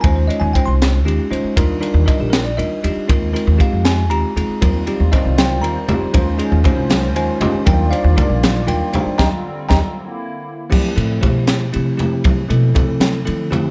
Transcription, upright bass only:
0.04 0.28 D#2 medium
0.41 0.53 D#2 loud
0.67 1.05 C2 medium
1.05 1.17 D#2 medium
1.31 1.43 D#2 medium
1.44 muted upright bass stroke soft
1.58 1.81 D#2 medium
1.94 2.06 D#2 loud
2.20 2.59 A#1 medium
2.58 2.70 D#2 medium
2.84 2.95 D#2 medium
2.96 muted upright bass stroke soft
3.10 3.33 D#2 loud
3.47 3.59 D#2 loud
3.73 4.10 F2 medium
4.10 4.22 D#2 medium
4.36 4.48 D#2 medium
4.49 muted upright bass stroke soft
4.62 4.86 D#2 loud
5.00 5.12 D#2 loud
5.25 5.63 C2 medium
5.63 5.75 D#2 medium
5.89 6.01 D#2 medium
6.02 muted upright bass stroke soft
6.15 6.39 D#2 medium
6.52 6.64 D#2 loud
6.76 7.14 C2 medium
7.14 7.27 D#2 medium
7.40 7.53 D#2 medium
7.54 muted upright bass stroke soft
7.67 7.91 D#2 medium
8.04 8.17 D#2 loud
8.29 8.69 A#1 medium
8.68 8.80 D#2 medium
8.94 9.05 D#2 medium
9.06 muted upright bass stroke soft
9.19 9.29 D#2 medium
9.71 9.80 D#2 medium
10.97 11.22 A2 medium
11.25 11.71 B2 medium
11.76 12.47 C3 medium
12.50 12.75 B2 medium
12.78 13.24 C3 medium
13.28 13.71 D3 medium

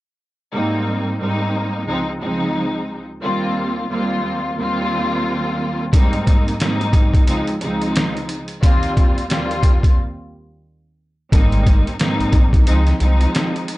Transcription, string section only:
0.54 1.16 G#2 loud
0.54 1.16 G3 medium
0.54 1.17 A#3 medium
0.54 1.17 C4 medium
0.54 1.17 D#4 loud
1.21 1.88 G#2 loud
1.21 1.88 G3 medium
1.21 1.89 A#3 medium
1.21 1.87 C4 medium
1.21 1.87 D#4 loud
1.88 2.10 C#2 medium
1.88 2.10 F3 medium
1.88 2.10 G#3 medium
1.88 2.10 C4 medium
1.88 2.10 D#4 loud
2.21 3.01 C#2 loud
2.21 3.01 F3 medium
2.21 3.01 G#3 medium
2.21 3.01 C4 medium
2.21 3.01 D#4 loud
3.23 3.86 D#2 medium
3.23 3.86 G3 medium
3.23 3.86 A#3 medium
3.23 3.86 C4 medium
3.23 3.86 F4 loud
3.90 4.53 D#2 medium
3.90 4.53 G3 medium
3.90 4.53 A#3 medium
3.90 4.54 C4 medium
3.90 4.54 F4 loud
4.58 5.84 D#2 loud
4.58 5.84 G3 loud
4.58 5.84 A#3 medium
4.58 5.84 C4 medium
4.58 5.84 F4 loud
5.93 6.56 G#2 loud
5.93 6.56 G3 medium
5.93 6.56 A#3 medium
5.93 6.56 C4 medium
5.93 6.56 D#4 loud
6.61 7.28 G#2 loud
6.61 7.28 G3 medium
6.61 7.28 A#3 medium
6.61 7.26 C4 medium
6.61 7.26 D#4 loud
7.27 7.50 C#2 medium
7.27 7.50 F3 loud
7.27 7.50 G#3 medium
7.27 7.50 C4 medium
7.27 7.50 D#4 loud
7.61 8.40 C#2 loud
7.61 8.40 F3 medium
7.61 8.40 G#3 medium
7.61 8.40 C4 medium
7.61 8.40 D#4 loud
8.62 9.25 D#2 loud
8.62 9.25 G3 medium
8.62 9.25 A#3 medium
8.62 9.25 C4 medium
8.62 9.26 F4 loud
9.30 9.93 D#2 medium
9.30 9.93 G3 medium
9.30 9.93 A#3 medium
9.30 9.93 C4 medium
9.30 9.93 F4 loud
11.32 11.95 G#2 loud
11.32 11.95 G3 medium
11.32 11.95 A#3 medium
11.32 11.95 C4 medium
11.32 11.96 D#4 loud
12.00 12.67 G#2 loud
12.00 12.67 G3 medium
12.00 12.67 A#3 medium
12.00 12.66 C4 medium
12.00 12.66 D#4 loud
12.66 12.89 C#2 medium
12.66 12.89 F3 medium
12.66 12.89 G#3 medium
12.66 12.89 C4 medium
12.66 12.89 D#4 loud
13.00 13.78 F3 medium
13.00 13.78 G#3 medium
13.00 13.78 C4 medium
13.00 13.78 D#4 loud

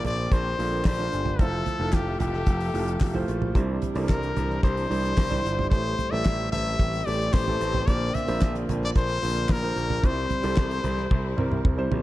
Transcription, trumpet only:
0.06 0.34 D5 loud
0.33 0.86 C5 loud
0.87 1.42 C5 loud
1.41 1.95 A4 medium
1.94 2.20 G4 medium
2.20 3.24 G4 medium
4.09 4.59 A#4 medium
4.63 5.67 C5 loud
5.70 6.12 C5 loud
6.11 6.51 E5 loud
6.52 7.07 E5 loud
7.05 7.34 D5 loud
7.33 7.88 C5 loud
7.87 8.16 D5 loud
8.14 8.55 E5 medium
8.85 8.90 D5 loud
8.97 9.53 C5 loud
9.52 10.07 A#4 loud
10.05 11.66 C5 medium

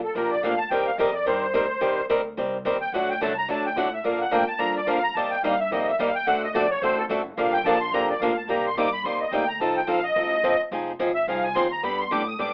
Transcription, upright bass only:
0.04 muted upright bass stroke soft
0.15 0.42 A#1 medium
0.43 0.70 D2 medium
0.70 0.97 D#2 medium
0.98 1.25 F2 medium
1.27 1.54 G2 medium
1.54 1.81 D2 medium
1.82 2.09 D#2 medium
2.09 2.37 D2 medium
2.38 2.64 C2 medium
2.65 2.92 D#2 medium
2.92 3.20 D2 medium
3.21 3.48 C2 loud
3.48 3.75 D2 medium
3.76 4.03 A2 medium
4.04 4.31 A#2 medium
4.32 4.47 A2 medium
4.48 muted upright bass stroke soft
4.59 4.86 G2 medium
4.87 5.14 F2 medium
5.15 5.30 D#2 medium
5.32 muted upright bass stroke soft
5.43 5.70 G2 medium
5.71 5.98 F2 medium
5.99 6.26 D#2 medium
6.26 6.53 D2 medium
6.54 6.81 A#1 medium
6.82 7.09 A1 medium
7.09 7.36 F#1 loud
7.37 7.64 G1 medium
7.64 7.91 A#1 medium
7.92 8.19 F2 medium
8.19 8.47 D2 medium
8.48 8.74 C2 medium
8.75 9.03 G2 medium
9.04 9.31 D#2 medium
9.31 9.59 D2 medium
9.60 9.87 C2 medium
9.87 10.15 A#1 medium
10.16 10.43 A1 loud
10.44 10.59 G1 medium
10.60 muted upright bass stroke soft
10.71 10.99 F1 medium
10.99 11.26 G#1 medium
11.27 11.55 C2 medium
11.56 11.83 D#2 loud
11.83 12.10 G2 medium
12.12 12.39 A2 loud
12.39 12.53 G#2 medium

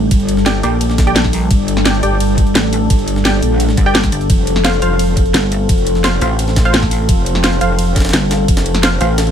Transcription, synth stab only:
0.00 0.44 G4 medium
0.00 0.44 D5 medium
0.00 0.44 G5 medium
0.46 0.51 G4 loud
0.46 0.51 D5 medium
0.46 0.51 G5 loud
0.63 0.69 G4 medium
0.63 0.69 D5 medium
0.63 0.69 G5 medium
1.07 1.15 G4 medium
1.07 1.15 D5 medium
1.07 1.15 G5 loud
1.85 1.91 G4 medium
1.85 1.91 D5 medium
1.85 1.91 G5 medium
2.03 3.23 G4 medium
2.03 3.23 D5 medium
2.03 3.23 G5 medium
3.25 3.30 G4 medium
3.25 3.30 D5 medium
3.25 3.30 G5 loud
3.86 3.94 G4 medium
3.86 3.94 D5 medium
3.86 3.94 G5 loud
4.64 4.70 F4 medium
4.64 4.70 C5 medium
4.64 4.70 F5 medium
4.82 6.02 F4 medium
4.82 6.02 C5 medium
4.82 6.02 F5 medium
6.04 6.09 F4 loud
6.04 6.09 C5 medium
6.04 6.09 F5 loud
6.22 6.27 F4 medium
6.22 6.27 C5 medium
6.22 6.27 F5 medium
6.65 6.73 F4 medium
6.65 6.73 C5 medium
6.65 6.73 F5 loud
7.44 7.49 F4 medium
7.44 7.49 C5 medium
7.44 7.49 F5 medium
7.61 8.81 F4 medium
7.61 8.81 C5 medium
7.61 8.81 F5 medium
8.83 8.88 F4 loud
8.83 8.88 C5 medium
8.83 8.88 F5 loud
9.01 9.06 F4 medium
9.01 9.06 C5 medium
9.01 9.06 F5 medium

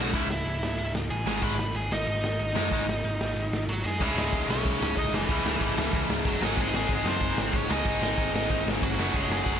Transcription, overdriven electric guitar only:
0.00 0.10 C#2 medium
0.00 0.11 G#2 medium
0.00 0.11 C#3 loud
0.13 0.27 C#2 loud
0.13 0.27 G#2 loud
0.13 0.27 C#3 loud
1.27 1.40 G#2 medium
1.27 1.40 D#3 loud
1.27 1.40 G#3 loud
1.42 1.55 G#2 medium
1.42 1.56 D#3 medium
1.42 1.56 G#3 loud
2.55 2.68 G#2 loud
2.55 2.69 D#3 loud
2.55 2.69 G#3 loud
2.71 2.84 G#2 medium
2.71 2.85 D#3 loud
2.71 2.85 G#3 loud
4.00 5.27 C#2 medium
4.00 5.29 G#2 loud
4.00 5.29 C#3 loud
4.00 5.31 G#3 loud
4.00 5.30 E4 loud
5.28 6.40 C#2 loud
5.28 6.40 G#2 loud
5.28 6.41 C#3 loud
5.28 6.43 G#3 loud
5.28 6.42 E4 loud
6.41 7.68 G#2 loud
6.41 7.69 D#3 loud
6.41 7.69 G#3 loud
6.41 7.70 C4 loud
6.41 7.70 D#4 loud
6.41 7.70 G#4 loud
7.69 8.97 G#2 medium
7.69 8.97 D#3 medium
7.69 8.97 G#3 medium
7.69 8.98 C4 loud
7.69 8.98 D#4 medium
7.69 8.98 G#4 loud
8.98 9.60 F#2 loud
8.98 9.60 C#3 loud
8.98 9.60 F#3 medium
8.98 9.60 A3 loud
8.98 9.60 C#4 loud
8.98 9.60 F#4 loud

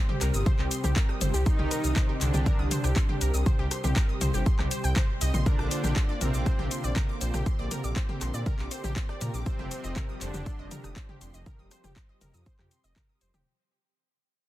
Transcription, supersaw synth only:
1.46 2.11 D#3 medium
1.46 2.11 D#4 loud
2.21 2.86 D3 medium
2.21 2.86 D4 loud
5.46 6.11 D3 medium
5.46 6.11 D4 loud
6.21 6.86 C3 medium
6.21 6.86 C4 loud
9.46 10.11 C3 medium
9.46 10.11 C4 loud
10.21 10.86 D3 medium
10.21 10.86 D4 loud

